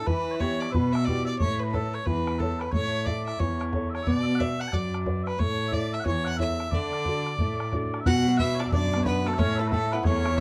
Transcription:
0.06 E3 B4, bodhran
0.31 C#5
0.35 B4
0.40 B3 E4 G4 C#5, bodhran
0.60 D5, bodhran
0.70 B4 E5
0.74 B2 B4, bodhran
0.93 E5, bodhran
1.05 B3 E4 G4 D5, bodhran
1.18 bodhran
1.24 D5 E5
1.29 D5
1.39 A2 A3 C#5, bodhran
1.59 B4
1.72 A4 B4 C#5, bodhran
1.94 C#5
2.06 E2 E3 B4, bodhran
2.27 bodhran
2.39 A4 B4 C#5, bodhran
2.50 bodhran
2.60 B4, bodhran
2.71 A2 A3 C#5, bodhran
3.04 E4 A4 D5 E5, bodhran
3.26 E5, bodhran
3.39 E2 E3 C#5, bodhran
3.61 bodhran
3.73 E4 A4 C#5, bodhran
3.84 bodhran
3.90 C#5 E5
3.95 C#5, bodhran
4.03 E5
4.07 B2 B3 D5, bodhran
4.23 D5 E5
4.35 F#5
4.39 F#4 B4 D5 E5, bodhran
4.60 F#5, bodhran
4.68 A5
4.72 F#2 F#3 D5, bodhran
4.94 bodhran
5.06 F#4 B4 D5, bodhran
5.17 bodhran
5.23 B4 E5
5.27 bodhran
5.39 A2 A3 C#5, bodhran
5.68 E5
5.72 E4 A4 C#5 D5, bodhran
5.93 E5, bodhran
6.00 C#5 F#5
6.06 E2 E3 C#5, bodhran
6.24 F#5, bodhran
6.37 E4 A4 C#5 E5, bodhran
6.50 bodhran
6.60 bodhran
6.71 D3 D5, bodhran
6.93 bodhran
7.05 D4 F#4 A4, bodhran
7.26 bodhran
7.39 A2 A3, bodhran
7.60 bodhran
7.73 D4 F#4 A4, bodhran
7.84 bodhran
7.94 bodhran
8.00 E5
8.06 B2 F#4 F#5, bodhran
8.17 F#4
8.27 F#3 F#4
8.38 B3 E4 E5, bodhran
8.55 C#5
8.59 D4 F#4 D5, bodhran
8.67 E5, bodhran
8.71 F#2 D4 D5, bodhran
8.94 B3, bodhran
9.00 C#5, bodhran
9.05 B3 D4 B4, bodhran
9.26 A3 B3 A4, bodhran
9.34 E5
9.38 A2 A3 C#4 C#5, bodhran
9.55 A4 E5
9.59 A3 E4 A4
9.68 A4 B4
9.72 A3, bodhran
9.92 B3 E4 B4, bodhran
10.04 E2 A3 C#4 C#5, bodhran
10.24 E4, bodhran
10.32 bodhran

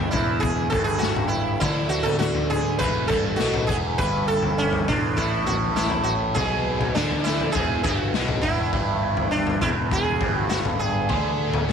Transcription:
Already playing: G2 B4 E5 G#5 B5
0.11 E1 E2 E4, kick, mid tom
0.40 G#4, kick, floor tom
0.70 G1 G2 A4, kick, floor tom
0.84 G#4
0.98 F#4
1.03 snare
1.16 floor tom, mid tom
1.28 E4
1.60 D2 D3 E4, kick, floor tom
1.89 F#4
2.03 A4, floor tom, mid tom
2.19 F#4, snare, mid tom
2.35 floor tom
2.50 G#4, mid tom
2.79 E1 E2 B4, kick, floor tom
3.08 G1 G2 A4, kick, floor tom
3.36 B1 F#4, snare
3.41 B2
3.54 floor tom, mid tom
3.67 E1 E2 G#4, kick
3.98 G1 G2 B4, kick, floor tom
4.28 A4
4.43 floor tom
4.58 C#4
4.73 floor tom
4.88 E1 E2 D4, kick, mid tom
5.17 A1 A2 E4, kick, floor tom
5.46 F#4, floor tom
5.76 E4, snare
5.90 floor tom, mid tom
6.03 F#4
6.34 B1 B2 G#4, kick, floor tom
6.81 floor tom, mid tom
6.95 D2 D3 D4, snare, mid tom
7.11 floor tom
7.24 E4, snare
7.40 floor tom
7.52 E1 E2 G#4, kick, floor tom
7.83 G1 G2 F#4, kick, floor tom
8.14 B1 B2, snare
8.28 floor tom, mid tom
8.41 E1 E2 E4, kick
8.73 G1 G2, kick, floor tom
9.17 floor tom
9.31 D4
9.47 floor tom
9.61 E1 E2 E4, kick, mid tom
9.91 G#4, kick, floor tom
10.21 G1 G2, kick, floor tom
10.49 F#4, snare
10.65 floor tom, mid tom
10.79 G#4
11.09 D2 D3, kick, floor tom
11.54 floor tom, mid tom
11.69 mid tom

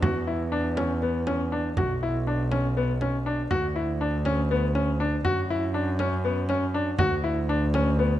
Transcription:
0.02 E2 F#4, frame drum
0.27 E4
0.52 D4
0.77 C#4, frame drum
1.02 B3, frame drum
1.27 C#4, frame drum
1.52 D4
1.77 B1 F#4, frame drum
2.03 E4
2.27 D4
2.52 C#4, frame drum
2.77 B3
3.01 C#4, frame drum
3.26 D4
3.51 D2 F#4, frame drum
3.76 E4
4.01 D4
4.25 C#4, frame drum
4.51 B3
4.75 C#4, frame drum
5.00 D4
5.24 F#2 F#4, frame drum
5.50 E4
5.74 D4
5.99 C#4, frame drum
6.24 B3
6.49 C#4, frame drum
6.74 D4
6.99 D2 F#4, frame drum
7.24 E4, frame drum
7.49 D4, frame drum
7.74 C#4, frame drum
7.99 B3

